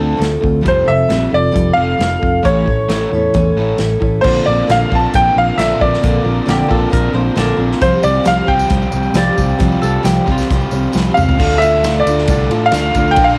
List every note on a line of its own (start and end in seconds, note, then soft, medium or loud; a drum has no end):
0.00 0.13 D2 medium
0.00 0.19 D3 medium
0.00 0.19 A3 medium
0.00 0.16 C4 soft
0.00 0.19 D4 medium
0.00 0.17 F4 soft
0.00 0.17 A4 soft
0.00 0.18 A5 medium
0.17 0.36 D2 medium
0.17 0.40 D3 medium
0.17 0.41 A3 medium
0.17 0.41 C4 medium
0.17 0.41 F4 medium
0.17 0.39 A4 medium
0.22 snare medium
0.22 closed hi-hat medium
0.40 0.62 D3 medium
0.40 0.63 A3 medium
0.40 0.62 C4 soft
0.40 0.62 F4 medium
0.40 0.62 A4 medium
0.40 kick medium
0.44 0.68 D2 medium
0.61 0.85 F2 medium
0.61 0.85 C3 medium
0.61 0.86 F3 medium
0.61 0.86 G3 medium
0.61 0.86 C4 medium
0.61 0.85 F4 medium
0.61 0.83 A4 medium
0.66 0.82 F1 medium
0.66 0.90 C5 medium
0.66 kick medium
0.66 closed hi-hat medium
0.85 1.04 F1 medium
0.85 1.08 F2 medium
0.85 1.08 C3 medium
0.85 1.08 C4 soft
0.85 1.09 F4 soft
0.85 1.09 A4 soft
0.85 1.34 E5 loud
1.07 1.26 A#1 medium
1.07 1.31 F2 medium
1.07 1.31 C3 medium
1.07 1.31 F3 medium
1.07 1.31 G3 soft
1.07 1.30 C4 medium
1.07 1.30 F4 medium
1.07 1.29 A4 medium
1.07 snare loud
1.07 closed hi-hat medium
1.30 1.49 F1 medium
1.30 1.52 F2 medium
1.30 1.53 C3 medium
1.30 1.51 C4 soft
1.30 1.52 F4 soft
1.30 1.52 A4 soft
1.34 1.80 D5 medium
1.51 1.75 F2 medium
1.51 1.75 C3 medium
1.51 1.76 F3 medium
1.51 1.76 G3 medium
1.51 1.76 C4 medium
1.51 1.75 F4 medium
1.51 1.72 A4 medium
1.56 1.72 F1 loud
1.56 kick loud
1.56 closed hi-hat medium
1.73 1.93 F1 medium
1.73 1.98 F2 medium
1.73 1.98 C3 medium
1.73 1.98 F3 medium
1.73 1.98 C4 soft
1.73 1.98 F4 soft
1.73 1.98 A4 soft
1.73 2.45 F5 loud
1.98 2.16 F1 medium
1.98 2.20 F2 medium
1.98 2.20 C3 medium
1.98 2.21 G3 medium
1.98 2.21 C4 medium
1.98 2.20 F4 medium
1.98 2.18 A4 medium
1.98 snare loud
1.98 closed hi-hat medium
2.19 2.42 F2 medium
2.19 2.43 C3 medium
2.19 2.44 C4 soft
2.19 2.43 F4 soft
2.19 2.43 A4 soft
2.19 kick medium
2.24 2.39 F1 medium
2.42 2.78 A1 medium
2.42 2.66 A2 medium
2.42 2.66 E3 medium
2.42 2.67 A3 medium
2.42 2.67 C#4 medium
2.42 2.67 E4 medium
2.42 2.66 A4 medium
2.42 3.75 C#5 medium
2.42 kick loud
2.42 closed hi-hat soft
2.66 2.87 A2 medium
2.66 2.87 E3 medium
2.66 2.91 C#4 soft
2.66 2.90 E4 soft
2.66 2.90 A4 medium
2.66 kick medium
2.70 2.91 A3 soft
2.88 3.06 A1 medium
2.88 3.10 A2 medium
2.88 3.10 E3 medium
2.88 3.13 A3 soft
2.88 3.13 C#4 medium
2.88 snare loud
2.88 closed hi-hat medium
2.94 3.13 E4 medium
2.94 3.12 A4 medium
3.11 3.28 E2 medium
3.11 3.32 A2 medium
3.11 3.32 E3 medium
3.11 3.35 E4 medium
3.11 3.35 A4 medium
3.15 3.34 A3 soft
3.15 3.34 C#4 soft
3.34 3.51 E2 medium
3.34 3.56 A2 medium
3.34 3.56 E3 medium
3.34 3.57 A3 medium
3.34 3.57 C#4 medium
3.34 3.57 E4 medium
3.34 3.56 A4 medium
3.34 kick loud
3.34 closed hi-hat medium
3.57 3.73 A1 medium
3.57 3.78 A2 medium
3.57 3.78 E3 medium
3.57 3.77 A3 soft
3.57 3.78 C#4 soft
3.57 3.79 E4 soft
3.57 3.79 A4 medium
3.78 3.95 A1 medium
3.78 3.99 A2 medium
3.78 3.99 E3 medium
3.78 4.01 A3 medium
3.78 4.00 C#4 medium
3.78 4.00 E4 medium
3.78 3.99 A4 medium
3.78 snare medium
3.78 closed hi-hat medium
4.00 4.18 A1 medium
4.00 4.21 A2 medium
4.00 4.21 E3 medium
4.00 4.24 A3 soft
4.00 4.24 C#4 soft
4.00 4.24 E4 soft
4.00 4.23 A4 soft
4.00 kick medium
4.21 4.39 A#1 medium
4.21 4.46 A#2 medium
4.21 4.46 D3 medium
4.21 4.47 A#3 medium
4.21 4.91 D4 medium
4.21 4.46 C5 medium
4.21 kick loud
4.21 crash loud
4.25 4.47 C4 medium
4.25 4.46 F4 medium
4.25 4.45 A#4 medium
4.46 4.62 A#1 medium
4.46 4.67 A#3 soft
4.46 4.68 C4 medium
4.46 4.67 F4 soft
4.46 4.68 A#4 medium
4.46 4.69 D5 medium
4.67 4.83 A#1 medium
4.67 4.90 A#2 medium
4.67 4.91 D3 medium
4.67 4.91 A#3 medium
4.67 4.91 C4 medium
4.67 4.90 F4 medium
4.67 4.89 A#4 medium
4.67 4.93 F5 medium
4.67 snare loud
4.67 closed hi-hat medium
4.90 5.06 A#1 medium
4.90 5.56 A#2 medium
4.90 5.56 D3 medium
4.90 5.12 A#3 soft
4.90 5.13 C4 soft
4.90 5.57 D4 medium
4.90 5.13 F4 medium
4.90 5.13 A#4 soft
4.90 kick medium
4.95 5.16 A5 medium
5.13 5.29 A#1 loud
5.13 5.36 A#3 medium
5.13 5.36 C4 medium
5.13 5.36 F4 medium
5.13 5.36 A#4 medium
5.13 5.35 G5 loud
5.13 kick loud
5.13 closed hi-hat medium
5.36 5.50 A#1 medium
5.36 5.59 A#3 soft
5.36 5.58 C4 soft
5.36 5.58 F4 soft
5.36 5.59 A#4 soft
5.36 5.58 F5 medium
5.58 5.72 A#1 medium
5.58 5.80 A#2 medium
5.58 5.81 D3 medium
5.58 5.81 A#3 medium
5.58 5.80 C4 medium
5.58 6.02 D4 medium
5.58 5.79 F4 medium
5.58 5.78 A#4 medium
5.58 5.81 E5 medium
5.58 snare medium
5.58 closed hi-hat medium
5.80 5.96 A#1 medium
5.80 6.02 A#3 soft
5.80 6.02 C4 soft
5.80 6.02 F4 medium
5.80 6.02 A#4 soft
5.80 7.11 D5 medium
5.80 kick medium
5.94 snare soft
6.02 6.18 A#1 medium
6.02 6.25 A#2 medium
6.02 6.25 D3 medium
6.02 6.24 A#3 medium
6.02 6.23 C4 medium
6.02 6.67 D4 medium
6.02 6.23 F4 medium
6.02 6.21 A#4 medium
6.02 kick loud
6.02 closed hi-hat medium
6.22 6.39 A#1 medium
6.22 6.45 A#3 soft
6.22 6.46 C4 soft
6.22 6.47 F4 soft
6.22 6.46 A#4 medium
6.46 6.62 A#1 medium
6.46 6.69 A#2 medium
6.46 6.69 D3 medium
6.46 6.69 A#3 medium
6.46 6.68 C4 medium
6.46 6.69 F4 medium
6.46 6.67 A#4 medium
6.46 snare loud
6.46 closed hi-hat medium
6.50 6.70 G4 medium
6.68 6.85 A#1 medium
6.68 7.35 A#2 medium
6.68 7.36 D3 medium
6.68 6.88 A#3 medium
6.68 6.90 C4 medium
6.68 7.35 D4 medium
6.68 6.90 F4 medium
6.68 6.92 A4 medium
6.68 6.91 A#4 medium
6.68 kick medium
6.90 7.07 A#1 loud
6.90 7.13 A#3 medium
6.90 7.14 C4 medium
6.90 7.13 F4 medium
6.90 7.12 A#4 medium
6.90 7.14 A#4 medium
6.90 kick loud
6.90 closed hi-hat medium
7.13 7.28 A#1 medium
7.13 7.35 A#3 soft
7.13 7.35 C4 soft
7.13 7.36 F4 soft
7.13 7.35 A#4 medium
7.13 7.36 C5 medium
7.36 7.51 A#1 medium
7.36 7.59 A#2 medium
7.36 7.59 D3 medium
7.36 7.58 A#3 medium
7.36 7.57 C4 medium
7.36 7.68 D4 medium
7.36 7.80 D4 medium
7.36 7.56 F4 loud
7.36 7.55 A#4 medium
7.36 7.70 A#4 medium
7.36 snare loud
7.36 closed hi-hat medium
7.57 7.73 A#1 medium
7.57 7.81 A#3 soft
7.57 7.81 C4 medium
7.57 7.81 F4 soft
7.57 7.80 A#4 medium
7.72 snare soft
7.81 7.97 C2 medium
7.81 8.04 C3 medium
7.81 8.04 F3 medium
7.81 8.04 G3 medium
7.81 8.03 C4 medium
7.81 8.47 F4 medium
7.81 8.03 G4 medium
7.81 8.05 C5 medium
7.81 8.01 C5 medium
7.81 kick loud
7.81 closed hi-hat medium
8.03 8.18 C2 medium
8.03 8.24 G3 soft
8.03 8.23 C4 soft
8.03 8.24 G4 medium
8.03 8.25 C5 medium
8.03 8.27 D5 medium
8.03 tambourine medium
8.14 tambourine soft
8.23 8.41 C2 loud
8.23 8.47 C3 medium
8.23 8.47 F3 medium
8.23 8.47 G3 medium
8.23 8.46 C4 medium
8.23 8.45 G4 medium
8.23 8.44 C5 medium
8.23 snare loud
8.23 closed hi-hat medium
8.23 tambourine medium
8.28 8.50 F5 medium
8.45 8.63 C2 medium
8.45 9.14 F3 medium
8.45 8.67 G3 medium
8.45 8.68 C4 medium
8.45 9.16 F4 medium
8.45 8.69 G4 medium
8.45 8.69 C5 medium
8.45 10.90 G5 medium
8.45 kick medium
8.45 tambourine soft
8.49 9.13 C3 medium
8.59 tambourine medium
8.68 8.85 C2 loud
8.68 8.92 G3 medium
8.68 8.92 C4 medium
8.68 8.91 G4 medium
8.68 8.91 C5 medium
8.68 kick loud
8.68 closed hi-hat medium
8.82 tambourine soft
8.92 9.07 C2 medium
8.92 9.14 G3 soft
8.92 9.14 C4 soft
8.92 9.15 G4 soft
8.92 9.15 C5 soft
8.92 tambourine medium
9.03 tambourine soft
9.14 9.29 C2 medium
9.14 9.37 C3 medium
9.14 9.37 F3 medium
9.14 9.38 G3 medium
9.14 9.37 C4 medium
9.14 9.61 F4 medium
9.14 9.36 G4 medium
9.14 9.36 C5 medium
9.14 9.81 D5 medium
9.14 snare loud
9.14 closed hi-hat medium
9.14 tambourine medium
9.37 9.53 C2 medium
9.37 9.57 G3 soft
9.37 9.59 C4 medium
9.37 9.59 G4 medium
9.37 9.59 C5 medium
9.37 kick medium
9.37 tambourine medium
9.59 9.75 C2 loud
9.59 9.82 C3 medium
9.59 9.82 F3 medium
9.59 9.82 G3 medium
9.59 9.82 C4 medium
9.59 10.25 F4 medium
9.59 9.81 G4 medium
9.59 9.80 C5 medium
9.59 kick loud
9.59 closed hi-hat medium
9.59 tambourine soft
9.72 tambourine soft
9.82 9.97 C2 medium
9.82 10.04 G3 medium
9.82 10.03 C4 medium
9.82 10.04 G4 medium
9.82 10.04 A4 medium
9.82 10.04 C5 medium
9.82 tambourine medium
10.03 10.19 C2 medium
10.03 10.26 C3 medium
10.03 10.26 F3 medium
10.03 10.27 G3 medium
10.03 10.25 C4 medium
10.03 10.26 G4 medium
10.03 10.24 C5 medium
10.03 snare loud
10.03 closed hi-hat medium
10.03 tambourine medium
10.25 10.42 C2 medium
10.25 10.92 C3 medium
10.25 10.92 F3 medium
10.25 10.49 G3 medium
10.25 10.49 C4 medium
10.25 10.92 F4 medium
10.25 10.49 G4 medium
10.25 10.48 C5 medium
10.25 kick medium
10.25 tambourine soft
10.31 11.16 F4 medium
10.38 snare soft
10.38 tambourine medium
10.50 10.65 C2 loud
10.50 10.72 G3 medium
10.50 10.73 C4 medium
10.50 10.72 G4 medium
10.50 10.71 C5 medium
10.50 kick loud
10.50 closed hi-hat medium
10.50 tambourine soft
10.61 tambourine soft
10.71 10.86 C2 medium
10.71 10.93 C4 medium
10.71 10.93 G4 medium
10.71 10.93 C5 medium
10.71 tambourine medium
10.75 10.92 G3 soft
10.83 tambourine soft
10.92 11.09 C2 medium
10.92 11.15 C3 medium
10.92 11.16 F3 medium
10.92 11.16 G3 medium
10.92 11.16 C4 medium
10.92 11.38 F4 medium
10.92 11.15 G4 medium
10.92 11.14 C5 medium
10.92 tambourine medium
10.96 snare medium
11.05 tambourine soft
11.14 11.40 C#2 medium
11.14 11.38 C4 soft
11.14 11.39 G4 soft
11.14 11.38 C5 medium
11.14 11.61 F5 medium
11.14 mid tom medium
11.14 tambourine medium
11.19 11.38 G3 soft
11.29 floor tom medium
11.29 tambourine soft
11.38 11.81 D2 medium
11.38 11.60 D3 medium
11.38 11.61 A3 medium
11.38 11.61 D4 medium
11.38 11.61 F4 medium
11.38 11.60 A4 medium
11.38 kick medium
11.38 crash loud
11.38 tambourine soft
11.52 tambourine soft
11.58 11.84 A4 medium
11.58 12.05 E5 medium
11.58 ride medium
11.62 11.83 A3 medium
11.62 11.83 D4 soft
11.62 11.84 F4 soft
11.62 tambourine medium
11.83 12.04 D2 medium
11.83 12.28 D3 medium
11.83 12.06 A3 medium
11.83 12.06 D4 medium
11.83 12.06 F4 medium
11.83 12.06 A4 medium
11.83 snare loud
11.83 ride medium
11.83 tambourine medium
11.95 tambourine soft
12.00 12.72 D5 medium
12.06 12.27 D2 medium
12.06 12.51 A3 medium
12.06 12.28 D4 soft
12.06 12.28 F4 medium
12.06 12.28 A4 medium
12.06 ride medium
12.06 tambourine medium
12.18 snare soft
12.28 12.49 C2 loud
12.28 12.50 D3 medium
12.28 12.50 A3 medium
12.28 12.51 D4 medium
12.28 12.49 F4 medium
12.28 12.48 A4 medium
12.28 kick loud
12.28 ride loud
12.28 tambourine medium
12.49 12.71 A2 medium
12.49 12.72 A3 medium
12.49 12.72 D4 soft
12.49 12.73 F4 soft
12.49 12.72 A4 soft
12.49 ride medium
12.49 tambourine soft
12.66 13.15 F5 medium
12.72 12.93 D2 medium
12.72 13.15 D3 medium
12.72 12.95 A3 medium
12.72 12.95 D4 medium
12.72 12.95 F4 medium
12.72 12.94 A4 medium
12.72 snare loud
12.72 ride medium
12.72 tambourine medium
12.94 13.16 D2 medium
12.94 13.17 D4 soft
12.94 13.18 F4 soft
12.94 13.17 A4 soft
12.94 kick medium
12.94 ride medium
12.94 tambourine medium
13.07 13.26 G5 loud
13.07 tambourine soft
13.16 13.38 A#1 medium
13.16 13.38 A#2 medium
13.16 13.38 D3 medium
13.16 13.38 F3 medium
13.16 13.38 A#3 medium
13.16 13.38 D4 medium
13.16 13.38 F4 medium
13.16 13.37 A#4 medium
13.16 kick loud
13.16 ride medium
13.16 tambourine soft
13.24 13.38 F5 medium
13.29 tambourine soft